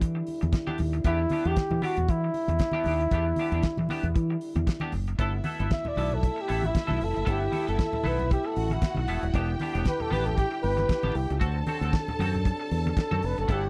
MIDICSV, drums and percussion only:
0, 0, Header, 1, 2, 480
1, 0, Start_track
1, 0, Key_signature, 1, "minor"
1, 0, Tempo, 518135
1, 967, Time_signature, 4, 2, 24, 8
1, 12687, End_track
2, 0, Start_track
2, 0, Title_t, "Drums"
2, 14, Note_on_c, 9, 36, 106
2, 20, Note_on_c, 9, 42, 64
2, 106, Note_off_c, 9, 36, 0
2, 112, Note_off_c, 9, 42, 0
2, 247, Note_on_c, 9, 46, 66
2, 261, Note_on_c, 9, 62, 37
2, 339, Note_off_c, 9, 46, 0
2, 354, Note_off_c, 9, 62, 0
2, 388, Note_on_c, 9, 42, 43
2, 397, Note_on_c, 9, 63, 75
2, 480, Note_off_c, 9, 42, 0
2, 486, Note_on_c, 9, 42, 62
2, 488, Note_on_c, 9, 36, 116
2, 490, Note_off_c, 9, 63, 0
2, 500, Note_on_c, 9, 38, 104
2, 579, Note_off_c, 9, 42, 0
2, 581, Note_off_c, 9, 36, 0
2, 592, Note_off_c, 9, 38, 0
2, 624, Note_on_c, 9, 63, 86
2, 716, Note_off_c, 9, 63, 0
2, 723, Note_on_c, 9, 46, 69
2, 732, Note_on_c, 9, 62, 33
2, 732, Note_on_c, 9, 64, 71
2, 816, Note_off_c, 9, 46, 0
2, 824, Note_off_c, 9, 62, 0
2, 824, Note_off_c, 9, 64, 0
2, 869, Note_on_c, 9, 42, 43
2, 961, Note_off_c, 9, 42, 0
2, 965, Note_on_c, 9, 42, 54
2, 968, Note_on_c, 9, 36, 99
2, 974, Note_on_c, 9, 62, 38
2, 1058, Note_off_c, 9, 42, 0
2, 1061, Note_off_c, 9, 36, 0
2, 1067, Note_off_c, 9, 62, 0
2, 1200, Note_on_c, 9, 46, 61
2, 1208, Note_on_c, 9, 63, 76
2, 1292, Note_off_c, 9, 46, 0
2, 1300, Note_off_c, 9, 63, 0
2, 1345, Note_on_c, 9, 42, 50
2, 1437, Note_off_c, 9, 42, 0
2, 1447, Note_on_c, 9, 42, 64
2, 1449, Note_on_c, 9, 62, 41
2, 1449, Note_on_c, 9, 63, 61
2, 1451, Note_on_c, 9, 36, 105
2, 1456, Note_on_c, 9, 38, 92
2, 1540, Note_off_c, 9, 42, 0
2, 1541, Note_off_c, 9, 62, 0
2, 1541, Note_off_c, 9, 63, 0
2, 1544, Note_off_c, 9, 36, 0
2, 1548, Note_off_c, 9, 38, 0
2, 1581, Note_on_c, 9, 64, 87
2, 1674, Note_off_c, 9, 64, 0
2, 1685, Note_on_c, 9, 62, 32
2, 1685, Note_on_c, 9, 63, 73
2, 1697, Note_on_c, 9, 46, 66
2, 1778, Note_off_c, 9, 62, 0
2, 1778, Note_off_c, 9, 63, 0
2, 1790, Note_off_c, 9, 46, 0
2, 1820, Note_on_c, 9, 42, 44
2, 1839, Note_on_c, 9, 64, 69
2, 1913, Note_off_c, 9, 42, 0
2, 1929, Note_on_c, 9, 62, 35
2, 1931, Note_off_c, 9, 64, 0
2, 1932, Note_on_c, 9, 36, 100
2, 1938, Note_on_c, 9, 42, 52
2, 2022, Note_off_c, 9, 62, 0
2, 2025, Note_off_c, 9, 36, 0
2, 2030, Note_off_c, 9, 42, 0
2, 2168, Note_on_c, 9, 46, 73
2, 2169, Note_on_c, 9, 62, 39
2, 2261, Note_off_c, 9, 46, 0
2, 2262, Note_off_c, 9, 62, 0
2, 2298, Note_on_c, 9, 63, 80
2, 2306, Note_on_c, 9, 42, 43
2, 2391, Note_off_c, 9, 63, 0
2, 2395, Note_on_c, 9, 62, 35
2, 2399, Note_off_c, 9, 42, 0
2, 2399, Note_on_c, 9, 42, 67
2, 2405, Note_on_c, 9, 36, 99
2, 2412, Note_on_c, 9, 38, 96
2, 2488, Note_off_c, 9, 62, 0
2, 2492, Note_off_c, 9, 42, 0
2, 2498, Note_off_c, 9, 36, 0
2, 2505, Note_off_c, 9, 38, 0
2, 2516, Note_on_c, 9, 63, 94
2, 2609, Note_off_c, 9, 63, 0
2, 2631, Note_on_c, 9, 62, 33
2, 2631, Note_on_c, 9, 64, 68
2, 2642, Note_on_c, 9, 46, 62
2, 2724, Note_off_c, 9, 62, 0
2, 2724, Note_off_c, 9, 64, 0
2, 2734, Note_off_c, 9, 46, 0
2, 2783, Note_on_c, 9, 42, 43
2, 2876, Note_off_c, 9, 42, 0
2, 2879, Note_on_c, 9, 62, 34
2, 2883, Note_on_c, 9, 42, 56
2, 2885, Note_on_c, 9, 36, 100
2, 2972, Note_off_c, 9, 62, 0
2, 2975, Note_off_c, 9, 42, 0
2, 2977, Note_off_c, 9, 36, 0
2, 3115, Note_on_c, 9, 63, 71
2, 3116, Note_on_c, 9, 46, 63
2, 3207, Note_off_c, 9, 63, 0
2, 3208, Note_off_c, 9, 46, 0
2, 3263, Note_on_c, 9, 42, 54
2, 3356, Note_off_c, 9, 42, 0
2, 3359, Note_on_c, 9, 42, 56
2, 3359, Note_on_c, 9, 63, 60
2, 3367, Note_on_c, 9, 36, 94
2, 3367, Note_on_c, 9, 38, 100
2, 3451, Note_off_c, 9, 42, 0
2, 3452, Note_off_c, 9, 63, 0
2, 3460, Note_off_c, 9, 36, 0
2, 3460, Note_off_c, 9, 38, 0
2, 3496, Note_on_c, 9, 64, 76
2, 3589, Note_off_c, 9, 64, 0
2, 3602, Note_on_c, 9, 62, 33
2, 3602, Note_on_c, 9, 63, 69
2, 3617, Note_on_c, 9, 46, 68
2, 3695, Note_off_c, 9, 62, 0
2, 3695, Note_off_c, 9, 63, 0
2, 3709, Note_off_c, 9, 46, 0
2, 3737, Note_on_c, 9, 42, 41
2, 3741, Note_on_c, 9, 64, 70
2, 3829, Note_off_c, 9, 42, 0
2, 3834, Note_off_c, 9, 64, 0
2, 3850, Note_on_c, 9, 36, 102
2, 3852, Note_on_c, 9, 42, 56
2, 3942, Note_off_c, 9, 36, 0
2, 3945, Note_off_c, 9, 42, 0
2, 4086, Note_on_c, 9, 46, 68
2, 4178, Note_off_c, 9, 46, 0
2, 4220, Note_on_c, 9, 63, 73
2, 4226, Note_on_c, 9, 42, 44
2, 4313, Note_off_c, 9, 63, 0
2, 4319, Note_off_c, 9, 42, 0
2, 4327, Note_on_c, 9, 36, 102
2, 4330, Note_on_c, 9, 42, 65
2, 4344, Note_on_c, 9, 38, 100
2, 4420, Note_off_c, 9, 36, 0
2, 4423, Note_off_c, 9, 42, 0
2, 4436, Note_off_c, 9, 38, 0
2, 4446, Note_on_c, 9, 63, 90
2, 4539, Note_off_c, 9, 63, 0
2, 4560, Note_on_c, 9, 46, 64
2, 4563, Note_on_c, 9, 62, 29
2, 4563, Note_on_c, 9, 64, 65
2, 4652, Note_off_c, 9, 46, 0
2, 4656, Note_off_c, 9, 62, 0
2, 4656, Note_off_c, 9, 64, 0
2, 4702, Note_on_c, 9, 42, 41
2, 4795, Note_off_c, 9, 42, 0
2, 4805, Note_on_c, 9, 62, 34
2, 4806, Note_on_c, 9, 36, 99
2, 4809, Note_on_c, 9, 42, 48
2, 4898, Note_off_c, 9, 36, 0
2, 4898, Note_off_c, 9, 62, 0
2, 4901, Note_off_c, 9, 42, 0
2, 5038, Note_on_c, 9, 46, 63
2, 5040, Note_on_c, 9, 62, 29
2, 5040, Note_on_c, 9, 63, 73
2, 5130, Note_off_c, 9, 46, 0
2, 5133, Note_off_c, 9, 62, 0
2, 5133, Note_off_c, 9, 63, 0
2, 5186, Note_on_c, 9, 42, 56
2, 5279, Note_off_c, 9, 42, 0
2, 5285, Note_on_c, 9, 42, 57
2, 5289, Note_on_c, 9, 62, 38
2, 5289, Note_on_c, 9, 63, 64
2, 5290, Note_on_c, 9, 36, 100
2, 5293, Note_on_c, 9, 38, 93
2, 5378, Note_off_c, 9, 42, 0
2, 5382, Note_off_c, 9, 36, 0
2, 5382, Note_off_c, 9, 62, 0
2, 5382, Note_off_c, 9, 63, 0
2, 5386, Note_off_c, 9, 38, 0
2, 5417, Note_on_c, 9, 64, 82
2, 5510, Note_off_c, 9, 64, 0
2, 5520, Note_on_c, 9, 63, 70
2, 5537, Note_on_c, 9, 46, 64
2, 5613, Note_off_c, 9, 63, 0
2, 5630, Note_off_c, 9, 46, 0
2, 5660, Note_on_c, 9, 42, 41
2, 5666, Note_on_c, 9, 64, 65
2, 5753, Note_off_c, 9, 42, 0
2, 5756, Note_on_c, 9, 62, 36
2, 5759, Note_off_c, 9, 64, 0
2, 5772, Note_on_c, 9, 36, 92
2, 5776, Note_on_c, 9, 42, 58
2, 5849, Note_off_c, 9, 62, 0
2, 5865, Note_off_c, 9, 36, 0
2, 5868, Note_off_c, 9, 42, 0
2, 6009, Note_on_c, 9, 46, 68
2, 6102, Note_off_c, 9, 46, 0
2, 6137, Note_on_c, 9, 63, 70
2, 6153, Note_on_c, 9, 42, 44
2, 6230, Note_off_c, 9, 63, 0
2, 6246, Note_off_c, 9, 42, 0
2, 6251, Note_on_c, 9, 36, 108
2, 6253, Note_on_c, 9, 42, 61
2, 6267, Note_on_c, 9, 38, 104
2, 6344, Note_off_c, 9, 36, 0
2, 6346, Note_off_c, 9, 42, 0
2, 6359, Note_off_c, 9, 38, 0
2, 6375, Note_on_c, 9, 63, 98
2, 6468, Note_off_c, 9, 63, 0
2, 6492, Note_on_c, 9, 46, 55
2, 6585, Note_off_c, 9, 46, 0
2, 6637, Note_on_c, 9, 42, 42
2, 6728, Note_on_c, 9, 62, 32
2, 6729, Note_off_c, 9, 42, 0
2, 6733, Note_on_c, 9, 36, 100
2, 6736, Note_on_c, 9, 42, 52
2, 6821, Note_off_c, 9, 62, 0
2, 6826, Note_off_c, 9, 36, 0
2, 6829, Note_off_c, 9, 42, 0
2, 6971, Note_on_c, 9, 62, 30
2, 6971, Note_on_c, 9, 63, 68
2, 6972, Note_on_c, 9, 46, 60
2, 7064, Note_off_c, 9, 62, 0
2, 7064, Note_off_c, 9, 63, 0
2, 7065, Note_off_c, 9, 46, 0
2, 7118, Note_on_c, 9, 42, 53
2, 7211, Note_off_c, 9, 42, 0
2, 7211, Note_on_c, 9, 62, 41
2, 7211, Note_on_c, 9, 63, 60
2, 7212, Note_on_c, 9, 42, 55
2, 7216, Note_on_c, 9, 36, 103
2, 7220, Note_on_c, 9, 38, 93
2, 7304, Note_off_c, 9, 42, 0
2, 7304, Note_off_c, 9, 62, 0
2, 7304, Note_off_c, 9, 63, 0
2, 7308, Note_off_c, 9, 36, 0
2, 7313, Note_off_c, 9, 38, 0
2, 7345, Note_on_c, 9, 64, 85
2, 7438, Note_off_c, 9, 64, 0
2, 7443, Note_on_c, 9, 62, 31
2, 7443, Note_on_c, 9, 63, 68
2, 7467, Note_on_c, 9, 46, 70
2, 7536, Note_off_c, 9, 62, 0
2, 7536, Note_off_c, 9, 63, 0
2, 7559, Note_off_c, 9, 46, 0
2, 7591, Note_on_c, 9, 64, 72
2, 7593, Note_on_c, 9, 42, 41
2, 7683, Note_off_c, 9, 64, 0
2, 7686, Note_off_c, 9, 42, 0
2, 7687, Note_on_c, 9, 62, 37
2, 7699, Note_on_c, 9, 36, 110
2, 7710, Note_on_c, 9, 42, 52
2, 7780, Note_off_c, 9, 62, 0
2, 7792, Note_off_c, 9, 36, 0
2, 7803, Note_off_c, 9, 42, 0
2, 7932, Note_on_c, 9, 46, 69
2, 8025, Note_off_c, 9, 46, 0
2, 8060, Note_on_c, 9, 63, 75
2, 8074, Note_on_c, 9, 42, 42
2, 8153, Note_off_c, 9, 63, 0
2, 8166, Note_off_c, 9, 42, 0
2, 8167, Note_on_c, 9, 42, 61
2, 8169, Note_on_c, 9, 36, 106
2, 8181, Note_on_c, 9, 38, 97
2, 8260, Note_off_c, 9, 42, 0
2, 8262, Note_off_c, 9, 36, 0
2, 8273, Note_off_c, 9, 38, 0
2, 8288, Note_on_c, 9, 63, 92
2, 8380, Note_off_c, 9, 63, 0
2, 8407, Note_on_c, 9, 46, 59
2, 8500, Note_off_c, 9, 46, 0
2, 8548, Note_on_c, 9, 42, 46
2, 8641, Note_off_c, 9, 42, 0
2, 8650, Note_on_c, 9, 36, 90
2, 8651, Note_on_c, 9, 42, 48
2, 8651, Note_on_c, 9, 62, 37
2, 8742, Note_off_c, 9, 36, 0
2, 8743, Note_off_c, 9, 62, 0
2, 8744, Note_off_c, 9, 42, 0
2, 8887, Note_on_c, 9, 46, 62
2, 8891, Note_on_c, 9, 63, 68
2, 8980, Note_off_c, 9, 46, 0
2, 8984, Note_off_c, 9, 63, 0
2, 9033, Note_on_c, 9, 42, 56
2, 9125, Note_off_c, 9, 42, 0
2, 9125, Note_on_c, 9, 42, 59
2, 9130, Note_on_c, 9, 36, 91
2, 9133, Note_on_c, 9, 38, 96
2, 9136, Note_on_c, 9, 62, 39
2, 9136, Note_on_c, 9, 63, 64
2, 9217, Note_off_c, 9, 42, 0
2, 9223, Note_off_c, 9, 36, 0
2, 9226, Note_off_c, 9, 38, 0
2, 9228, Note_off_c, 9, 62, 0
2, 9228, Note_off_c, 9, 63, 0
2, 9265, Note_on_c, 9, 64, 75
2, 9358, Note_off_c, 9, 64, 0
2, 9365, Note_on_c, 9, 63, 71
2, 9382, Note_on_c, 9, 46, 66
2, 9458, Note_off_c, 9, 63, 0
2, 9474, Note_off_c, 9, 46, 0
2, 9505, Note_on_c, 9, 42, 44
2, 9514, Note_on_c, 9, 64, 66
2, 9597, Note_off_c, 9, 42, 0
2, 9607, Note_off_c, 9, 64, 0
2, 9613, Note_on_c, 9, 36, 97
2, 9619, Note_on_c, 9, 42, 61
2, 9705, Note_off_c, 9, 36, 0
2, 9711, Note_off_c, 9, 42, 0
2, 9848, Note_on_c, 9, 46, 70
2, 9941, Note_off_c, 9, 46, 0
2, 9988, Note_on_c, 9, 63, 79
2, 9993, Note_on_c, 9, 42, 45
2, 10081, Note_off_c, 9, 63, 0
2, 10085, Note_off_c, 9, 42, 0
2, 10086, Note_on_c, 9, 62, 33
2, 10090, Note_on_c, 9, 36, 113
2, 10093, Note_on_c, 9, 42, 59
2, 10106, Note_on_c, 9, 38, 106
2, 10179, Note_off_c, 9, 62, 0
2, 10183, Note_off_c, 9, 36, 0
2, 10185, Note_off_c, 9, 42, 0
2, 10199, Note_off_c, 9, 38, 0
2, 10219, Note_on_c, 9, 63, 100
2, 10312, Note_off_c, 9, 63, 0
2, 10328, Note_on_c, 9, 46, 61
2, 10421, Note_off_c, 9, 46, 0
2, 10473, Note_on_c, 9, 42, 46
2, 10565, Note_off_c, 9, 42, 0
2, 10570, Note_on_c, 9, 36, 104
2, 10575, Note_on_c, 9, 42, 52
2, 10575, Note_on_c, 9, 62, 35
2, 10663, Note_off_c, 9, 36, 0
2, 10667, Note_off_c, 9, 42, 0
2, 10667, Note_off_c, 9, 62, 0
2, 10806, Note_on_c, 9, 46, 62
2, 10807, Note_on_c, 9, 62, 32
2, 10807, Note_on_c, 9, 63, 75
2, 10899, Note_off_c, 9, 46, 0
2, 10900, Note_off_c, 9, 62, 0
2, 10900, Note_off_c, 9, 63, 0
2, 10952, Note_on_c, 9, 42, 52
2, 11045, Note_off_c, 9, 42, 0
2, 11050, Note_on_c, 9, 42, 58
2, 11053, Note_on_c, 9, 36, 101
2, 11056, Note_on_c, 9, 63, 61
2, 11058, Note_on_c, 9, 38, 91
2, 11142, Note_off_c, 9, 42, 0
2, 11145, Note_off_c, 9, 36, 0
2, 11149, Note_off_c, 9, 63, 0
2, 11151, Note_off_c, 9, 38, 0
2, 11193, Note_on_c, 9, 64, 85
2, 11286, Note_off_c, 9, 64, 0
2, 11292, Note_on_c, 9, 63, 71
2, 11308, Note_on_c, 9, 46, 65
2, 11385, Note_off_c, 9, 63, 0
2, 11401, Note_off_c, 9, 46, 0
2, 11433, Note_on_c, 9, 64, 71
2, 11435, Note_on_c, 9, 42, 45
2, 11525, Note_off_c, 9, 64, 0
2, 11528, Note_off_c, 9, 42, 0
2, 11529, Note_on_c, 9, 62, 38
2, 11537, Note_on_c, 9, 36, 99
2, 11545, Note_on_c, 9, 42, 53
2, 11621, Note_off_c, 9, 62, 0
2, 11629, Note_off_c, 9, 36, 0
2, 11637, Note_off_c, 9, 42, 0
2, 11777, Note_on_c, 9, 46, 68
2, 11779, Note_on_c, 9, 62, 36
2, 11869, Note_off_c, 9, 46, 0
2, 11872, Note_off_c, 9, 62, 0
2, 11914, Note_on_c, 9, 63, 70
2, 11918, Note_on_c, 9, 42, 47
2, 12007, Note_off_c, 9, 63, 0
2, 12010, Note_off_c, 9, 42, 0
2, 12013, Note_on_c, 9, 36, 108
2, 12013, Note_on_c, 9, 62, 33
2, 12016, Note_on_c, 9, 42, 64
2, 12030, Note_on_c, 9, 38, 107
2, 12106, Note_off_c, 9, 36, 0
2, 12106, Note_off_c, 9, 62, 0
2, 12109, Note_off_c, 9, 42, 0
2, 12123, Note_off_c, 9, 38, 0
2, 12147, Note_on_c, 9, 63, 94
2, 12240, Note_off_c, 9, 63, 0
2, 12252, Note_on_c, 9, 46, 64
2, 12254, Note_on_c, 9, 62, 34
2, 12345, Note_off_c, 9, 46, 0
2, 12347, Note_off_c, 9, 62, 0
2, 12396, Note_on_c, 9, 42, 45
2, 12489, Note_off_c, 9, 42, 0
2, 12493, Note_on_c, 9, 36, 101
2, 12495, Note_on_c, 9, 42, 58
2, 12496, Note_on_c, 9, 62, 36
2, 12586, Note_off_c, 9, 36, 0
2, 12588, Note_off_c, 9, 42, 0
2, 12588, Note_off_c, 9, 62, 0
2, 12687, End_track
0, 0, End_of_file